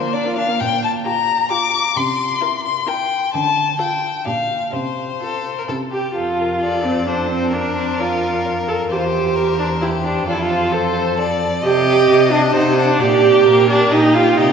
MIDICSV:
0, 0, Header, 1, 5, 480
1, 0, Start_track
1, 0, Key_signature, -1, "major"
1, 0, Tempo, 456969
1, 629, Time_signature, 3, 2, 24, 8
1, 3993, Tempo, 469116
1, 7353, Tempo, 456274
1, 15181, End_track
2, 0, Start_track
2, 0, Title_t, "Violin"
2, 0, Program_c, 0, 40
2, 0, Note_on_c, 0, 72, 59
2, 139, Note_on_c, 0, 74, 66
2, 155, Note_off_c, 0, 72, 0
2, 373, Note_off_c, 0, 74, 0
2, 380, Note_on_c, 0, 77, 68
2, 628, Note_on_c, 0, 79, 78
2, 643, Note_off_c, 0, 77, 0
2, 867, Note_off_c, 0, 79, 0
2, 874, Note_on_c, 0, 81, 69
2, 958, Note_off_c, 0, 81, 0
2, 1107, Note_on_c, 0, 82, 77
2, 1576, Note_off_c, 0, 82, 0
2, 1587, Note_on_c, 0, 86, 81
2, 2065, Note_on_c, 0, 84, 83
2, 2081, Note_off_c, 0, 86, 0
2, 2775, Note_off_c, 0, 84, 0
2, 2782, Note_on_c, 0, 84, 72
2, 3020, Note_on_c, 0, 79, 71
2, 3036, Note_off_c, 0, 84, 0
2, 3499, Note_off_c, 0, 79, 0
2, 3506, Note_on_c, 0, 81, 82
2, 3981, Note_off_c, 0, 81, 0
2, 3993, Note_on_c, 0, 79, 62
2, 4458, Note_off_c, 0, 79, 0
2, 4471, Note_on_c, 0, 77, 62
2, 4941, Note_off_c, 0, 77, 0
2, 4963, Note_on_c, 0, 72, 55
2, 5908, Note_off_c, 0, 72, 0
2, 6408, Note_on_c, 0, 69, 43
2, 6645, Note_on_c, 0, 70, 43
2, 6660, Note_off_c, 0, 69, 0
2, 6872, Note_off_c, 0, 70, 0
2, 6878, Note_on_c, 0, 69, 38
2, 7341, Note_off_c, 0, 69, 0
2, 7357, Note_on_c, 0, 69, 38
2, 7832, Note_on_c, 0, 70, 43
2, 7848, Note_off_c, 0, 69, 0
2, 8059, Note_off_c, 0, 70, 0
2, 8066, Note_on_c, 0, 72, 45
2, 8306, Note_on_c, 0, 74, 39
2, 8322, Note_off_c, 0, 72, 0
2, 8787, Note_on_c, 0, 70, 41
2, 8802, Note_off_c, 0, 74, 0
2, 9270, Note_on_c, 0, 72, 47
2, 9286, Note_off_c, 0, 70, 0
2, 10713, Note_off_c, 0, 72, 0
2, 10719, Note_on_c, 0, 74, 52
2, 10803, Note_off_c, 0, 74, 0
2, 10948, Note_on_c, 0, 72, 53
2, 11178, Note_off_c, 0, 72, 0
2, 11184, Note_on_c, 0, 72, 47
2, 11663, Note_on_c, 0, 69, 51
2, 11678, Note_off_c, 0, 72, 0
2, 12143, Note_off_c, 0, 69, 0
2, 12376, Note_on_c, 0, 75, 51
2, 12849, Note_off_c, 0, 75, 0
2, 12862, Note_on_c, 0, 75, 46
2, 13098, Note_off_c, 0, 75, 0
2, 13102, Note_on_c, 0, 78, 53
2, 13337, Note_off_c, 0, 78, 0
2, 13343, Note_on_c, 0, 78, 50
2, 13583, Note_off_c, 0, 78, 0
2, 13832, Note_on_c, 0, 79, 51
2, 14301, Note_off_c, 0, 79, 0
2, 14306, Note_on_c, 0, 79, 45
2, 14777, Note_off_c, 0, 79, 0
2, 14782, Note_on_c, 0, 79, 50
2, 15020, Note_off_c, 0, 79, 0
2, 15028, Note_on_c, 0, 79, 58
2, 15181, Note_off_c, 0, 79, 0
2, 15181, End_track
3, 0, Start_track
3, 0, Title_t, "Violin"
3, 0, Program_c, 1, 40
3, 0, Note_on_c, 1, 70, 39
3, 589, Note_off_c, 1, 70, 0
3, 1115, Note_on_c, 1, 67, 52
3, 1468, Note_off_c, 1, 67, 0
3, 1587, Note_on_c, 1, 67, 55
3, 1944, Note_off_c, 1, 67, 0
3, 2542, Note_on_c, 1, 70, 51
3, 2901, Note_off_c, 1, 70, 0
3, 3022, Note_on_c, 1, 70, 52
3, 3382, Note_off_c, 1, 70, 0
3, 3984, Note_on_c, 1, 69, 51
3, 4342, Note_off_c, 1, 69, 0
3, 4474, Note_on_c, 1, 67, 47
3, 4829, Note_off_c, 1, 67, 0
3, 5443, Note_on_c, 1, 69, 46
3, 5778, Note_off_c, 1, 69, 0
3, 5816, Note_on_c, 1, 70, 42
3, 5861, Note_off_c, 1, 70, 0
3, 5922, Note_on_c, 1, 69, 42
3, 6004, Note_off_c, 1, 69, 0
3, 6161, Note_on_c, 1, 67, 41
3, 6398, Note_off_c, 1, 67, 0
3, 6873, Note_on_c, 1, 74, 48
3, 7348, Note_on_c, 1, 72, 42
3, 7363, Note_off_c, 1, 74, 0
3, 7815, Note_off_c, 1, 72, 0
3, 7821, Note_on_c, 1, 70, 49
3, 9239, Note_off_c, 1, 70, 0
3, 9266, Note_on_c, 1, 72, 48
3, 9751, Note_on_c, 1, 70, 48
3, 9767, Note_off_c, 1, 72, 0
3, 10234, Note_on_c, 1, 67, 46
3, 10250, Note_off_c, 1, 70, 0
3, 10705, Note_off_c, 1, 67, 0
3, 10711, Note_on_c, 1, 69, 48
3, 11182, Note_on_c, 1, 72, 58
3, 11198, Note_off_c, 1, 69, 0
3, 11666, Note_off_c, 1, 72, 0
3, 11674, Note_on_c, 1, 74, 64
3, 12127, Note_on_c, 1, 75, 64
3, 12142, Note_off_c, 1, 74, 0
3, 13083, Note_on_c, 1, 72, 67
3, 13099, Note_off_c, 1, 75, 0
3, 13574, Note_off_c, 1, 72, 0
3, 13580, Note_on_c, 1, 74, 64
3, 14056, Note_off_c, 1, 74, 0
3, 14066, Note_on_c, 1, 70, 64
3, 14557, Note_on_c, 1, 67, 61
3, 14573, Note_off_c, 1, 70, 0
3, 15017, Note_off_c, 1, 67, 0
3, 15023, Note_on_c, 1, 67, 55
3, 15181, Note_off_c, 1, 67, 0
3, 15181, End_track
4, 0, Start_track
4, 0, Title_t, "Viola"
4, 0, Program_c, 2, 41
4, 31, Note_on_c, 2, 58, 47
4, 152, Note_on_c, 2, 62, 47
4, 168, Note_off_c, 2, 58, 0
4, 271, Note_on_c, 2, 65, 48
4, 286, Note_off_c, 2, 62, 0
4, 389, Note_on_c, 2, 62, 44
4, 405, Note_off_c, 2, 65, 0
4, 507, Note_on_c, 2, 58, 44
4, 522, Note_off_c, 2, 62, 0
4, 628, Note_off_c, 2, 58, 0
4, 1101, Note_on_c, 2, 65, 52
4, 1460, Note_off_c, 2, 65, 0
4, 1582, Note_on_c, 2, 65, 54
4, 1942, Note_off_c, 2, 65, 0
4, 2534, Note_on_c, 2, 64, 55
4, 2896, Note_off_c, 2, 64, 0
4, 3015, Note_on_c, 2, 64, 50
4, 3378, Note_off_c, 2, 64, 0
4, 3984, Note_on_c, 2, 65, 47
4, 4341, Note_off_c, 2, 65, 0
4, 4458, Note_on_c, 2, 62, 44
4, 4820, Note_off_c, 2, 62, 0
4, 5433, Note_on_c, 2, 65, 35
4, 5795, Note_off_c, 2, 65, 0
4, 5919, Note_on_c, 2, 64, 41
4, 6145, Note_off_c, 2, 64, 0
4, 6156, Note_on_c, 2, 67, 54
4, 6384, Note_off_c, 2, 67, 0
4, 6398, Note_on_c, 2, 65, 57
4, 7108, Note_on_c, 2, 60, 49
4, 7123, Note_off_c, 2, 65, 0
4, 7342, Note_on_c, 2, 62, 54
4, 7358, Note_off_c, 2, 60, 0
4, 7578, Note_off_c, 2, 62, 0
4, 7584, Note_on_c, 2, 60, 55
4, 7819, Note_on_c, 2, 62, 54
4, 7835, Note_off_c, 2, 60, 0
4, 8317, Note_on_c, 2, 65, 52
4, 8333, Note_off_c, 2, 62, 0
4, 8796, Note_off_c, 2, 65, 0
4, 9031, Note_on_c, 2, 69, 57
4, 9115, Note_off_c, 2, 69, 0
4, 9274, Note_on_c, 2, 67, 51
4, 9343, Note_on_c, 2, 65, 48
4, 9358, Note_off_c, 2, 67, 0
4, 9413, Note_on_c, 2, 67, 55
4, 9429, Note_off_c, 2, 65, 0
4, 9982, Note_off_c, 2, 67, 0
4, 9989, Note_on_c, 2, 62, 53
4, 10073, Note_off_c, 2, 62, 0
4, 10223, Note_on_c, 2, 64, 50
4, 10307, Note_off_c, 2, 64, 0
4, 10464, Note_on_c, 2, 62, 56
4, 10699, Note_off_c, 2, 62, 0
4, 10706, Note_on_c, 2, 65, 63
4, 10779, Note_on_c, 2, 64, 52
4, 10795, Note_off_c, 2, 65, 0
4, 10852, Note_on_c, 2, 65, 67
4, 10868, Note_off_c, 2, 64, 0
4, 11179, Note_on_c, 2, 69, 62
4, 11195, Note_off_c, 2, 65, 0
4, 11664, Note_off_c, 2, 69, 0
4, 12141, Note_on_c, 2, 67, 85
4, 12853, Note_on_c, 2, 62, 73
4, 12869, Note_off_c, 2, 67, 0
4, 13100, Note_on_c, 2, 63, 64
4, 13116, Note_off_c, 2, 62, 0
4, 13330, Note_off_c, 2, 63, 0
4, 13337, Note_on_c, 2, 62, 80
4, 13576, Note_on_c, 2, 67, 85
4, 13592, Note_off_c, 2, 62, 0
4, 14303, Note_off_c, 2, 67, 0
4, 14311, Note_on_c, 2, 62, 73
4, 14539, Note_on_c, 2, 63, 82
4, 14555, Note_off_c, 2, 62, 0
4, 14779, Note_on_c, 2, 65, 77
4, 14794, Note_off_c, 2, 63, 0
4, 15016, Note_on_c, 2, 63, 71
4, 15032, Note_off_c, 2, 65, 0
4, 15181, Note_off_c, 2, 63, 0
4, 15181, End_track
5, 0, Start_track
5, 0, Title_t, "Cello"
5, 0, Program_c, 3, 42
5, 640, Note_on_c, 3, 46, 58
5, 1012, Note_off_c, 3, 46, 0
5, 2064, Note_on_c, 3, 48, 58
5, 2445, Note_off_c, 3, 48, 0
5, 3513, Note_on_c, 3, 50, 55
5, 3893, Note_off_c, 3, 50, 0
5, 4469, Note_on_c, 3, 46, 47
5, 4849, Note_off_c, 3, 46, 0
5, 4945, Note_on_c, 3, 48, 47
5, 5333, Note_off_c, 3, 48, 0
5, 5926, Note_on_c, 3, 48, 42
5, 6307, Note_off_c, 3, 48, 0
5, 6407, Note_on_c, 3, 41, 39
5, 9233, Note_off_c, 3, 41, 0
5, 9271, Note_on_c, 3, 40, 45
5, 10687, Note_off_c, 3, 40, 0
5, 10714, Note_on_c, 3, 41, 49
5, 12118, Note_off_c, 3, 41, 0
5, 12151, Note_on_c, 3, 48, 61
5, 12569, Note_off_c, 3, 48, 0
5, 12622, Note_on_c, 3, 48, 56
5, 13046, Note_off_c, 3, 48, 0
5, 13106, Note_on_c, 3, 48, 62
5, 13534, Note_off_c, 3, 48, 0
5, 13586, Note_on_c, 3, 46, 57
5, 14012, Note_off_c, 3, 46, 0
5, 14064, Note_on_c, 3, 46, 61
5, 14490, Note_off_c, 3, 46, 0
5, 14545, Note_on_c, 3, 46, 58
5, 14969, Note_off_c, 3, 46, 0
5, 15024, Note_on_c, 3, 48, 57
5, 15181, Note_off_c, 3, 48, 0
5, 15181, End_track
0, 0, End_of_file